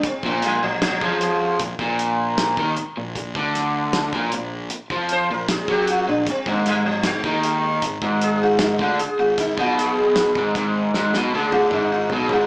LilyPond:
<<
  \new Staff \with { instrumentName = "Sitar" } { \time 4/4 \tempo 4 = 77 c'16 bes16 g16 f16 <des f>4 r2 | r2 r8 c''16 bes'16 aes'16 g'16 f'16 d'16 | c'16 bes16 g16 f16 aes4 r8 aes'16 f'16 ees'16 f'16 aes'16 f'16 | ees'16 f'16 aes'4 r4 aes'16 f'16 ees'16 f'16 aes'16 f'16 | }
  \new Staff \with { instrumentName = "Overdriven electric guitar" } { \clef bass \time 4/4 r16 bes,8 bes,8 f8. bes,16 bes,4 ees16 r16 bes,16~ | bes,16 d4 bes,16 bes,8 r16 f8 bes,8 ges8 bes,16 | r16 aes,8 aes,8 ees8. aes,16 aes,4 d16 r16 aes,16~ | aes,16 ces4 aes,16 aes,8 aes,16 ces16 d8 aes,8 ces16 aes,16 | }
  \new Staff \with { instrumentName = "Fingered electric bass" } { \clef bass \time 4/4 r16 bes,,8 bes,,8 f,8. bes,,16 bes,,4 ees,16 r16 bes,,16~ | bes,,16 d,4 bes,,16 bes,,8 r16 f,8 bes,,8 ges,8 bes,,16 | r16 aes,,8 aes,,8 ees,8. aes,,16 aes,,4 d,16 r16 aes,,16~ | aes,,16 ces,4 aes,,16 aes,,8 aes,,16 ces,16 d,8 aes,,8 ces,16 aes,,16 | }
  \new DrumStaff \with { instrumentName = "Drums" } \drummode { \time 4/4 <hh bd>16 bd16 <hh sn>8 <hh sn>16 bd16 hh8 <hh bd>16 bd16 hh8 <hh sn>16 bd16 hh8 | <hh bd>16 bd16 <hh sn>8 <hh sn>16 bd16 hh8 hh16 bd16 hh8 <hh sn>16 bd16 hh8 | <hh bd>16 bd16 <hh sn>8 <hh sn>16 bd16 hh8 <hh bd>16 bd16 hh8 <hh sn>16 bd16 hh8 | <hh bd>16 bd16 <hh sn>8 <hh sn>16 bd16 <hh bd>8 sn16 sn8 tommh16 toml8 tomfh16 tomfh16 | }
>>